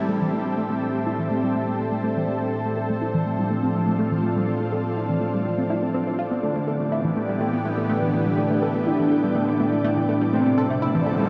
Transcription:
Already playing: synth drone A2, analog synth pad G3 C4 E4 A4, ambient pad C4 G4 E5 A5
0.09 synth arpeggio sound A3
0.21 synth arpeggio sound E3
0.33 synth arpeggio sound A3
0.46 synth arpeggio sound G3
0.58 synth arpeggio sound A3, analog synth pad D4
0.70 synth arpeggio sound A3
0.82 synth arpeggio sound A4
0.95 synth arpeggio sound A3
1.06 synth arpeggio sound E4
1.19 synth arpeggio sound E3
1.31 synth arpeggio sound A3
1.43 synth arpeggio sound G3
1.55 synth arpeggio sound A3
1.68 synth arpeggio sound C4
1.79 synth arpeggio sound A3
1.92 synth arpeggio sound A3
2.04 synth arpeggio sound A3
2.17 synth arpeggio sound E3
2.28 synth arpeggio sound A3
2.41 synth arpeggio sound G3
2.53 analog synth pad F3, synth arpeggio sound A3
2.65 synth arpeggio sound A3
2.77 ambient pad F4, synth arpeggio sound A4
2.90 synth arpeggio sound A3
3.00 synth arpeggio sound E4, ambient pad D5
3.14 synth arpeggio sound E3
3.26 synth arpeggio sound A3
3.39 synth arpeggio sound G3
3.50 synth arpeggio sound A3
3.63 synth arpeggio sound C4
3.75 synth arpeggio sound A3
3.87 synth arpeggio sound A3
3.99 synth arpeggio sound A3
4.12 synth arpeggio sound E3
4.24 synth arpeggio sound A3
4.36 synth arpeggio sound G3
4.48 synth arpeggio sound A3
4.61 synth arpeggio sound A3
4.72 synth arpeggio sound A4
4.85 synth arpeggio sound A3
4.97 synth arpeggio sound E4
5.10 synth arpeggio sound E3
5.21 synth arpeggio sound A3
5.34 synth arpeggio sound G3
5.46 synth arpeggio sound A3
5.58 synth arpeggio sound C4
5.70 synth arpeggio sound E4
5.83 synth arpeggio sound C4
5.94 synth arpeggio sound C4
6.07 synth arpeggio sound C4
6.19 synth arpeggio sound F4
6.31 synth arpeggio sound B3
6.43 analog synth pad E3 B3 G4, synth arpeggio sound A3, ambient pad B3, analog synth lead D4
6.56 synth arpeggio sound A3
6.62 ambient pad E4
6.68 synth arpeggio sound A4
6.80 synth arpeggio sound A3
6.92 synth arpeggio sound E4
7.05 synth arpeggio sound E3
7.16 synth arpeggio sound A3
7.29 synth arpeggio sound G3
7.41 synth arpeggio sound A3
7.53 synth arpeggio sound B3
7.65 synth arpeggio sound A3, ambient pad G5
7.78 synth arpeggio sound A3
7.89 synth arpeggio sound A3, analog synth lead D4
8.02 synth arpeggio sound E3
8.14 synth arpeggio sound A3
8.26 synth arpeggio sound G3
8.38 synth arpeggio sound A3
8.51 synth arpeggio sound A3
8.62 synth arpeggio sound A4
8.75 synth arpeggio sound A3
8.87 analog synth lead D4, synth arpeggio sound E4
8.99 synth arpeggio sound E3
9.11 synth arpeggio sound A3
9.24 synth arpeggio sound G3
9.36 synth arpeggio sound A3
9.48 synth arpeggio sound B3
9.60 synth arpeggio sound A3
9.73 synth arpeggio sound A3
9.84 synth arpeggio sound A3
9.97 synth arpeggio sound E3
10.09 synth arpeggio sound A3
10.21 synth arpeggio sound G3
10.33 ambient pad F3, analog synth pad F3 C4 A4, synth arpeggio sound A3, analog synth lead C4, riser
10.40 ambient pad C4
10.46 synth arpeggio sound A3
10.58 synth arpeggio sound A4
10.70 synth arpeggio sound A3
10.82 synth arpeggio sound E4
10.95 synth arpeggio sound E3
11.06 synth arpeggio sound A3
11.19 synth arpeggio sound G3

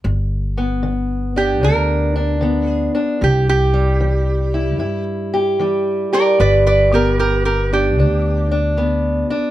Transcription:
0.04 upright bass G1, steel-string acoustic guitar G2
0.58 steel-string acoustic guitar B3
0.83 steel-string acoustic guitar D3
1.36 steel-string acoustic guitar D4, resonator guitar played with a steel bar G4
1.61 steel-string acoustic guitar D2 D4, upright bass D2, resonator guitar played with a steel bar A#4
2.16 steel-string acoustic guitar D4
2.41 steel-string acoustic guitar D3 B3
2.70 resonator guitar played with a steel bar G#4
2.95 steel-string acoustic guitar D4
3.21 upright bass C2, steel-string acoustic guitar C3, resonator guitar played with a steel bar G4
3.49 resonator guitar played with a steel bar G4
3.74 steel-string acoustic guitar G3
4.00 steel-string acoustic guitar E3
4.54 steel-string acoustic guitar E4
4.79 steel-string acoustic guitar G2 E4, upright bass G2
5.34 steel-string acoustic guitar G4
5.59 steel-string acoustic guitar E3 G3
6.13 steel-string acoustic guitar G4, resonator guitar played with a steel bar A#4 D5
6.39 upright bass G1, steel-string acoustic guitar G2, resonator guitar played with a steel bar B4 D5
6.67 resonator guitar played with a steel bar B4 D5
6.92 steel-string acoustic guitar B3, resonator guitar played with a steel bar G4 A#4
7.19 steel-string acoustic guitar D3, resonator guitar played with a steel bar G4 A#4
7.45 resonator guitar played with a steel bar G4 A#4
7.73 steel-string acoustic guitar D4, resonator guitar played with a steel bar G4
7.98 steel-string acoustic guitar D2 D4, upright bass D2
8.51 steel-string acoustic guitar D4
8.77 steel-string acoustic guitar D3 B3
9.30 steel-string acoustic guitar D4

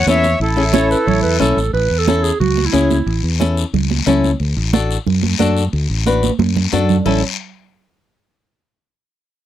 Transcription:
0.07 fingered electric bass E2, nylon-string guitar C#4 E4 A4, accordion C#5 E5, high conga, short guiro
0.24 high conga, short guiro
0.40 fingered electric bass A1, accordion E4 A4, high conga, long guiro
0.56 nylon-string guitar C#4 E4 G#4
0.73 nylon-string guitar C#4 E4 A4, clarinet C#5, high conga, short guiro
0.91 clarinet B4, short guiro
1.07 fingered electric bass A1, clarinet C#5, high conga, low conga, long guiro
1.23 fingered electric bass E2, clarinet B4
1.39 fingered electric bass B1, nylon-string guitar C#4 E4 A4, clarinet A4, high conga, low conga, short guiro
1.57 fingered electric bass A1, short guiro
1.73 fingered electric bass A1, clarinet B4, high conga, long guiro
1.90 fingered electric bass E2
1.98 clarinet A4
2.07 nylon-string guitar C#4 E4 A4, high conga, short guiro
2.23 clarinet G#4, short guiro
2.40 fingered electric bass C#2, clarinet F#4, high conga, low conga, long guiro
2.58 high conga
2.66 clarinet E4
2.73 fingered electric bass C#2, nylon-string guitar C#4 E4 G#4, high conga, short guiro
2.91 high conga, short guiro
3.06 fingered electric bass A1, high conga, long guiro
3.23 fingered electric bass E2
3.39 nylon-string guitar C#4 E4 A4, high conga, short guiro
3.57 short guiro
3.73 fingered electric bass C#2, high conga, low conga, long guiro
3.91 high conga
4.06 fingered electric bass C#2, nylon-string guitar C#4 E4 A4, high conga, low conga, short guiro
4.24 high conga, short guiro
4.40 fingered electric bass D2, high conga, long guiro
4.57 fingered electric bass A1
4.73 nylon-string guitar D4 F#4 A4, high conga, short guiro
4.91 short guiro
5.07 fingered electric bass F#2, high conga, low conga, long guiro
5.23 high conga
5.39 fingered electric bass F#2, nylon-string guitar D4 F#4 A4, high conga, short guiro
5.57 short guiro
5.73 fingered electric bass D2, high conga, long guiro
5.90 fingered electric bass A1
6.06 nylon-string guitar D4 F#4 B4, high conga, short guiro
6.23 high conga, short guiro
6.39 fingered electric bass F#2, high conga, long guiro
6.56 low conga
6.72 fingered electric bass F#2, nylon-string guitar D4 F#4 A4, low conga, short guiro
6.89 low conga, short guiro
7.06 fingered electric bass A1, nylon-string guitar C#4 E4 A4, clarinet E4, low conga, long guiro

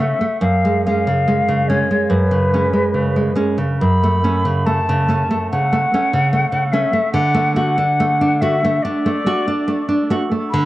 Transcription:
Already playing: nylon-string guitar C#3
0.00 nylon-string guitar A3 C#4, flute E5
0.21 nylon-string guitar A3
0.41 nylon-string guitar F#2, flute F5
0.65 nylon-string guitar G#3
0.85 nylon-string guitar G#3 C#4, flute F5
1.07 nylon-string guitar C#3
1.27 nylon-string guitar G#3
1.48 nylon-string guitar C#3
1.68 nylon-string guitar G#3 C#4, flute C#5
1.91 nylon-string guitar G#3
2.10 nylon-string guitar F#2, flute B4
2.31 nylon-string guitar C#3
2.54 nylon-string guitar G#3 C#4
2.73 nylon-string guitar G#3
2.94 nylon-string guitar C#3
3.16 nylon-string guitar G#3
3.35 nylon-string guitar G#3 C#4
3.58 nylon-string guitar C#3
3.81 nylon-string guitar F#2, flute B5
4.03 nylon-string guitar A3
4.24 nylon-string guitar A3 C#4
4.45 nylon-string guitar C#3
4.66 nylon-string guitar A3, flute A5
4.89 nylon-string guitar C#3
5.08 nylon-string guitar A3 C#4
5.31 nylon-string guitar A3
5.51 nylon-string guitar C#3, flute F#5
5.73 nylon-string guitar A3
5.94 nylon-string guitar A3 C#4
6.13 nylon-string guitar C#3
6.33 nylon-string guitar A3
6.52 nylon-string guitar C#3
6.72 nylon-string guitar A3 C#4, flute E5
6.93 nylon-string guitar A3
7.13 nylon-string guitar D3, flute F#5
7.34 nylon-string guitar A3
7.56 nylon-string guitar A3 F#4, flute F#5
7.78 nylon-string guitar D4
8.00 nylon-string guitar A3
8.21 nylon-string guitar D4
8.41 nylon-string guitar A3 F#4, flute E5
8.65 nylon-string guitar A3
8.83 nylon-string guitar D4, flute D5
9.06 nylon-string guitar A3
9.26 nylon-string guitar A3 F#4
9.48 nylon-string guitar D4
9.68 nylon-string guitar A3
9.89 nylon-string guitar D4
10.10 nylon-string guitar A3 F#4
10.31 nylon-string guitar A3
10.51 nylon-string guitar D3, flute B5

